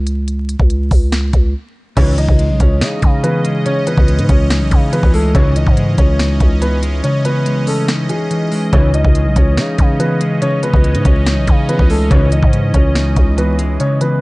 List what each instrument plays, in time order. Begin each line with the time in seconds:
Already playing: 808-style bass C#2
0.07 closed hi-hat
0.28 closed hi-hat
0.49 closed hi-hat
0.59 808-style bass C#2, kick
0.70 closed hi-hat
0.91 808-style bass C#2, kick, open hi-hat
1.12 snare, closed hi-hat
1.33 808-style bass C#2, kick, closed hi-hat
1.97 analog polysynth C#2 G#2 E3, 808-style bass C#2, clean electric guitar C#3, analog synth pad E3 C#4 D#5, grand piano C#4 C#5, kick, closed hi-hat, crash
2.18 clean electric guitar E3, grand piano D#4 D#5, closed hi-hat
2.29 808-style bass C#2, kick
2.39 clean electric guitar G#3, closed hi-hat
2.50 808-style bass B1
2.60 808-style bass C#2, clean electric guitar C#4, grand piano C#4 C#5, kick, closed hi-hat
2.81 808-style bass C#3, clean electric guitar D#4, snare, closed hi-hat
3.02 808-style bass C#3, kick, closed hi-hat
3.23 clean electric guitar E3, grand piano B3 B4, closed hi-hat
3.45 clean electric guitar G#3, closed hi-hat
3.66 clean electric guitar C#3, grand piano C#4 C#5, closed hi-hat
3.87 clean electric guitar E3, grand piano B3 B4, closed hi-hat
3.97 808-style bass C#2, kick
4.08 clean electric guitar G#3, closed hi-hat
4.19 808-style bass G#2, closed hi-hat
4.29 808-style bass C#2, clean electric guitar C#4, grand piano C#4 C#5, kick, closed hi-hat
4.50 clean electric guitar D#4, snare, closed hi-hat
4.61 808-style bass B1
4.71 808-style bass C#3, kick, closed hi-hat
4.92 clean electric guitar E3, grand piano B3 B4, closed hi-hat
5.03 808-style bass C#2, kick
5.14 clean electric guitar G#3, grand piano A3 A4, open hi-hat
5.34 808-style bass C#2, analog polysynth C#2 G#2 E3, clean electric guitar C#3, analog synth pad C#4 D#5, grand piano C#4 C#5, kick, closed hi-hat
5.56 clean electric guitar E3, grand piano D#4 D#5, closed hi-hat
5.67 808-style bass G#2, kick
5.77 clean electric guitar G#3, closed hi-hat
5.98 808-style bass C#2, clean electric guitar C#4, grand piano C#4 C#5, kick, closed hi-hat
6.19 clean electric guitar D#4, snare, closed hi-hat
6.40 808-style bass C#2, kick, closed hi-hat
6.61 clean electric guitar E3, grand piano B3 B4, closed hi-hat
6.83 clean electric guitar G#3, closed hi-hat
7.04 clean electric guitar C#3, grand piano C#4 C#5, closed hi-hat
7.25 clean electric guitar E3, grand piano B3 B4, closed hi-hat
7.46 clean electric guitar G#3, closed hi-hat
7.67 grand piano A3 A4, clean electric guitar C#4, open hi-hat
7.88 clean electric guitar D#4, snare, closed hi-hat
8.09 grand piano G#3 G#4, closed hi-hat
8.31 clean electric guitar E3, closed hi-hat
8.52 clean electric guitar G#3, open hi-hat
8.73 analog polysynth C#2 G#2 E3, 808-style bass C#2, clean electric guitar C#3, analog synth pad C#4, grand piano C#4 C#5, kick, closed hi-hat
8.94 clean electric guitar E3, grand piano D#4 D#5, closed hi-hat
9.05 808-style bass C#2, kick
9.15 clean electric guitar G#3, closed hi-hat
9.26 808-style bass B1
9.36 808-style bass C#2, clean electric guitar C#4, grand piano C#4 C#5, kick, closed hi-hat
9.57 808-style bass C#3, clean electric guitar D#4, snare, closed hi-hat
9.78 808-style bass C#3, kick, closed hi-hat
9.99 clean electric guitar E3, grand piano B3 B4, closed hi-hat
10.21 clean electric guitar G#3, closed hi-hat
10.42 clean electric guitar C#3, grand piano C#4 C#5, closed hi-hat
10.63 clean electric guitar E3, grand piano B3 B4, closed hi-hat
10.74 808-style bass C#2, kick
10.84 clean electric guitar G#3, closed hi-hat
10.95 808-style bass G#2, closed hi-hat
11.05 808-style bass C#2, clean electric guitar C#4, grand piano C#4 C#5, kick, closed hi-hat
11.26 clean electric guitar D#4, snare, closed hi-hat
11.37 808-style bass B1
11.47 808-style bass C#3, kick, closed hi-hat
11.69 clean electric guitar E3, grand piano B3 B4, closed hi-hat
11.79 808-style bass C#2, kick
11.90 clean electric guitar G#3, grand piano A3 A4, open hi-hat
12.11 analog polysynth C#2 G#2 E3, 808-style bass C#2, clean electric guitar C#3, analog synth pad E3, grand piano C#4 C#5, kick, closed hi-hat
12.32 clean electric guitar E3, grand piano D#4 D#5, closed hi-hat
12.43 808-style bass G#2, kick
12.53 clean electric guitar G#3, closed hi-hat
12.74 808-style bass C#2, clean electric guitar C#4, grand piano C#4 C#5, kick, closed hi-hat
12.95 clean electric guitar D#4, snare, closed hi-hat
13.16 808-style bass C#2, kick, closed hi-hat
13.37 clean electric guitar E3, grand piano B3 B4, closed hi-hat
13.59 clean electric guitar G#3, closed hi-hat
13.80 clean electric guitar C#3, grand piano C#4 C#5, closed hi-hat
14.01 clean electric guitar E3, grand piano B3 B4, closed hi-hat